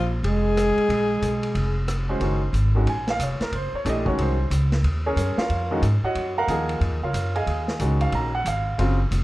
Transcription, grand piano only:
2.09 2.20 G#3 medium
2.09 2.20 C#4 medium
2.09 2.20 F#4 soft
2.09 2.52 C5 medium
2.21 2.39 D#3 soft
2.21 2.40 G#3 soft
2.21 2.40 C#4 soft
2.21 2.40 F#4 medium
2.75 2.86 D#3 medium
2.75 2.86 G#3 medium
2.75 2.86 C#4 medium
2.75 2.86 F#4 medium
2.89 3.08 G#5 medium
3.10 3.21 F5 medium
3.23 3.41 C#5 medium
3.42 3.53 A#4 medium
3.55 3.74 C5 medium
3.75 3.86 C#5 medium
3.85 4.04 E3 medium
3.85 4.04 A3 medium
3.85 4.04 D4 soft
3.85 4.04 G4 medium
3.89 4.07 D#5 medium
4.05 4.34 D#3 medium
4.05 4.34 G#3 medium
4.05 4.35 C#4 medium
4.05 4.35 F#4 medium
4.05 4.18 C#5 medium
4.21 4.50 C5 medium
5.06 5.36 C#4 medium
5.06 5.36 G#4 medium
5.06 5.36 A#4 medium
5.06 5.36 C#5 medium
5.38 5.80 F4 medium
5.38 5.80 A#4 medium
5.38 5.80 C#5 medium
5.38 5.80 F5 medium
5.71 5.82 D#3 medium
5.71 5.82 G#3 medium
5.71 5.82 C#4 medium
5.71 5.82 F#4 medium
6.04 6.35 F#4 medium
6.04 6.35 C#5 medium
6.04 6.35 D#5 medium
6.04 6.34 F#5 medium
6.38 6.79 A#4 medium
6.38 6.79 F5 medium
6.38 6.79 F#5 medium
6.38 6.79 A#5 medium
6.49 6.98 F3 medium
6.49 6.98 A#3 soft
6.49 6.98 D#4 medium
6.49 6.99 G#4 medium
7.03 7.34 F4 medium
7.03 7.33 A#4 soft
7.03 7.34 C#5 soft
7.03 7.33 F5 medium
7.36 7.77 G#4 medium
7.36 7.77 D#5 medium
7.36 7.78 F5 medium
7.36 7.77 G#5 medium
7.80 8.30 D#3 medium
7.80 8.30 G#3 medium
7.80 8.30 C#4 soft
7.80 8.30 F#4 medium
8.01 8.13 F5 medium
8.15 8.34 A#5 medium
8.35 8.46 F#5 medium
8.48 8.96 F5 medium
8.78 8.97 C#3 medium
8.78 8.97 F#3 medium
8.78 8.97 C4 medium
8.78 8.98 F4 medium

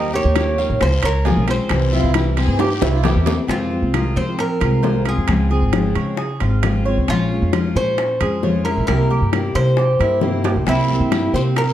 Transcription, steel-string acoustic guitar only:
0.00 0.13 D#3 medium
0.00 0.13 G3 medium
0.00 0.13 A#3 medium
0.00 0.14 D#4 medium
0.00 0.13 G4 medium
0.15 0.36 A#3 soft
0.15 0.36 D#4 soft
0.15 0.36 G4 medium
0.36 0.57 D#3 medium
0.36 0.58 G3 medium
0.36 0.58 A#3 medium
0.36 0.58 D#4 medium
0.36 0.58 G4 medium
0.59 0.81 A#3 soft
0.59 0.81 D#4 soft
0.59 0.80 G4 soft
0.81 muted steel-string acoustic guitar stroke medium
1.26 1.47 C#3 medium
1.26 1.47 F3 medium
1.26 1.48 G#3 medium
1.26 1.48 C#4 medium
1.26 1.46 F4 medium
1.47 1.70 G#3 soft
1.47 1.70 C#4 soft
1.47 1.69 F4 soft
1.71 1.92 C3 medium
1.71 1.93 E3 medium
1.71 1.93 G3 medium
1.71 1.93 C4 medium
1.71 1.91 E4 medium
1.92 2.15 G3 soft
1.92 2.15 C4 medium
1.92 2.14 E4 medium
2.15 2.36 C3 medium
2.15 2.37 E3 medium
2.15 2.37 G3 medium
2.15 2.37 C4 medium
2.15 2.36 E4 medium
2.37 2.59 G3 soft
2.37 2.59 C4 soft
2.37 2.59 E4 soft
2.60 muted steel-string acoustic guitar stroke medium
3.03 3.25 C3 medium
3.03 3.25 E3 medium
3.03 3.26 G3 medium
3.03 3.26 C4 medium
3.03 3.24 E4 medium
3.25 3.48 G3 soft
3.25 3.48 C4 soft
3.25 3.48 E4 soft
3.47 3.70 C3 medium
3.47 3.70 D#3 medium
3.47 3.70 G#3 medium
3.47 3.70 C4 medium
3.47 3.69 F4 medium
3.70 3.93 G#3 soft
3.70 3.93 C4 soft
3.70 3.93 F4 medium
3.93 4.37 C3 medium
3.93 4.37 D#3 medium
3.93 4.38 G#3 medium
3.93 4.38 C4 medium
3.93 4.38 F4 medium
4.38 muted steel-string acoustic guitar stroke medium
4.61 4.83 G#3 soft
4.61 4.83 C4 soft
4.61 4.83 F4 soft
4.83 5.05 C3 medium
4.83 5.05 D#3 medium
4.83 5.06 G#3 medium
4.83 5.06 C4 medium
4.83 5.04 F4 medium
5.05 5.27 G#3 soft
5.05 5.27 C4 soft
5.05 5.27 F4 soft
5.27 5.50 C#3 medium
5.27 5.50 F3 medium
5.27 5.50 G#3 medium
5.27 5.50 C4 medium
5.27 5.49 F4 medium
5.50 5.72 G#3 soft
5.50 5.73 C4 soft
5.50 5.72 F4 medium
5.73 6.17 C#3 medium
5.73 6.17 F3 medium
5.73 6.18 G#3 medium
5.73 6.18 C4 medium
5.73 6.18 F4 medium
6.18 muted steel-string acoustic guitar stroke medium
6.41 6.63 G#3 soft
6.41 6.63 C4 soft
6.41 6.62 F4 soft
6.63 6.85 C#3 medium
6.63 6.85 F3 medium
6.63 6.85 G#3 medium
6.63 6.85 C4 medium
6.63 6.85 F4 medium
6.86 7.08 G#3 soft
6.86 7.08 C4 soft
6.86 7.07 F4 medium
7.09 7.30 F3 medium
7.09 7.31 G#3 medium
7.09 7.31 C#4 medium
7.09 7.30 F4 medium
7.31 7.53 G#3 soft
7.31 7.53 C#4 medium
7.31 7.53 F4 medium
7.53 7.97 F3 medium
7.53 7.98 G#3 medium
7.53 7.98 C#4 medium
7.53 7.98 F4 medium
7.99 muted steel-string acoustic guitar stroke medium
8.21 8.42 G#3 soft
8.21 8.43 C#4 soft
8.21 8.42 F4 soft
8.42 8.64 F3 medium
8.42 8.65 G#3 medium
8.42 8.65 C#4 medium
8.42 8.64 F4 medium
8.65 8.88 G#3 soft
8.65 8.88 C#4 soft
8.65 8.87 F4 soft
8.88 9.09 C3 medium
8.88 9.10 G3 medium
8.88 9.10 A#3 medium
8.88 9.10 E4 medium
8.88 9.11 G4 medium
9.12 9.33 A#3 soft
9.12 9.33 E4 soft
9.12 9.33 G4 medium
9.33 9.77 C3 medium
9.33 9.77 G3 medium
9.33 9.77 A#3 medium
9.33 9.78 E4 medium
9.33 9.78 G4 medium
9.78 muted steel-string acoustic guitar stroke medium
9.99 10.21 A#3 soft
9.99 10.21 E4 soft
9.99 10.21 G4 medium
10.21 10.43 C3 medium
10.21 10.44 G3 medium
10.21 10.44 A#3 medium
10.21 10.44 E4 medium
10.21 10.43 G4 medium
10.45 10.66 A#3 soft
10.45 10.67 E4 soft
10.45 10.66 G4 soft
10.66 10.88 C3 medium
10.66 10.89 G3 medium
10.66 10.89 A#3 medium
10.66 10.88 E4 medium
10.66 10.87 G4 medium
10.88 11.11 A#3 soft
10.88 11.11 E4 soft
10.88 11.11 G4 medium
11.11 11.56 C3 medium
11.11 11.55 G3 medium
11.11 11.56 A#3 medium
11.11 11.56 E4 medium
11.11 11.57 G4 medium
11.57 muted steel-string acoustic guitar stroke medium

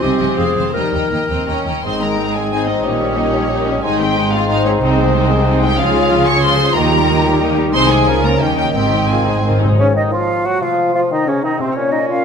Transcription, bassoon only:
1.85 3.80 D#3 soft
3.84 5.81 D#3 soft
5.79 6.78 C#3 medium
6.76 7.81 D#3 medium
8.08 8.43 F3 soft
8.41 9.62 D#3 soft
9.79 9.97 C#3 medium
9.95 10.12 D#3 medium
10.12 10.46 F3 medium
10.45 10.61 F#3 medium
10.62 10.94 F3 medium
10.95 11.13 F3 medium
11.12 11.30 D#3 medium
11.29 11.46 C#3 medium
11.45 11.63 D#3 medium
11.61 11.76 C3 medium
11.77 12.25 A#2 medium

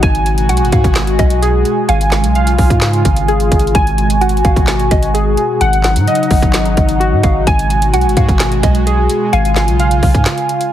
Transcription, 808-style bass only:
0.03 0.51 G#1 loud
0.49 0.62 B1 loud
0.61 0.72 G#1 medium
0.72 0.84 G#2 loud
0.84 1.18 G#1 loud
1.19 1.64 B1 loud
1.89 2.25 G#1 loud
2.24 2.57 B1 loud
2.59 2.70 B1 loud
2.70 3.04 G#2 loud
3.05 3.50 G#1 loud
3.52 3.74 G#1 loud
3.75 4.42 G#1 loud
4.45 4.56 G#1 loud
4.56 4.90 G#1 loud
4.91 5.36 G#1 loud
5.61 5.97 G#1 loud
5.96 6.07 G#2 loud
6.31 6.42 G#1 loud
6.42 6.76 G#1 loud
6.77 7.14 G#1 loud
7.12 7.23 G#2 loud
7.24 7.46 G#1 loud
7.47 7.95 G#1 loud
7.93 8.07 B1 loud
8.05 8.16 G#1 medium
8.17 8.28 G#2 loud
8.29 8.62 G#1 loud
8.63 9.08 B1 loud
9.33 9.69 G#1 loud
9.68 10.01 B1 loud
10.03 10.14 B1 loud
10.15 10.26 G#2 loud

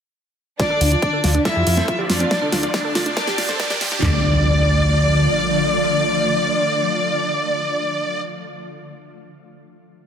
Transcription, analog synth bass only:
0.81 0.96 D2 medium
1.24 1.38 D2 medium
1.56 1.63 F2 medium
1.67 1.81 F2 medium
2.10 2.24 F2 medium
2.52 2.67 D2 medium
2.95 3.10 D2 medium
3.27 3.35 G1 medium
3.38 3.53 G1 loud
3.81 3.96 G1 medium
4.02 5.27 D2 loud

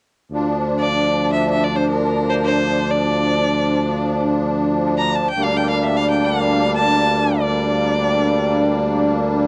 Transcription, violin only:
0.80 1.28 D5 medium
1.33 1.48 E5 medium
1.50 1.66 E5 medium
1.64 1.77 D5 medium
1.76 1.88 C5 medium
1.90 2.31 A#4 medium
2.30 2.46 A#4 medium
2.30 2.34 C5 medium
2.45 2.92 C5 medium
2.91 4.20 D5 medium
4.98 5.17 A#5 medium
5.16 5.30 A5 medium
5.30 5.45 G5 medium
5.44 5.58 F5 medium
5.57 5.68 G5 medium
5.70 5.78 F5 medium
5.78 5.85 F5 medium
5.83 5.98 E5 medium
5.97 6.08 F5 medium
6.11 6.27 G5 medium
6.25 6.73 F5 medium
6.75 7.41 A5 medium
7.40 9.11 D5 medium

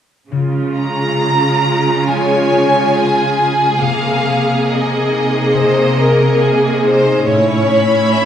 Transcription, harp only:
0.32 3.85 C#3 soft
0.76 2.51 C#4 soft
1.21 2.94 G#4 soft
1.64 3.38 F4 soft
2.08 5.98 G#3 soft
2.52 3.84 C#4 soft
2.95 4.66 G#4 soft
3.39 3.85 F4 soft
3.81 5.53 C3 soft
4.23 5.96 A#3 soft
4.67 6.39 G#4 soft
5.10 6.82 D#4 soft
5.54 7.29 C3 soft
5.98 7.30 A#3 soft
6.40 7.29 G#4 soft
6.83 7.29 D#4 soft
7.26 8.25 A2 soft
7.68 8.25 C#4 soft
8.12 8.25 A4 soft

